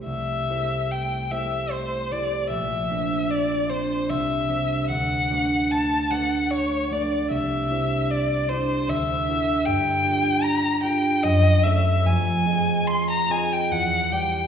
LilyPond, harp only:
\new Staff \with { instrumentName = "Harp" } { \time 3/4 \key c \major \tempo 4 = 75 <c, a e' g' c''>8 <a e' g' c''>4 <a e' g' c''>4 <a e' g' c''>8 | bes,,8 <c' d' bes' c''>4 <c' d' bes' c''>8 c,8 <c' d' g' c''>8 | d,8 <a d' fis' b'>4 <a d' fis' b'>4 <a d' fis' b'>8 | c,8 <d' e' g' c''>4 <d' e' g' c''>8 d,8 <d' e' fis' a'>8 |
\key f \dorian g,8 <d' f' g' bes'>4 <d' f' g' bes'>8 ges,8 <a des' a' des''>8 | f,8 <c' f' aes' ees''>4 <c' f' aes' ees''>8 e,8 <g g' b' d''>8 | }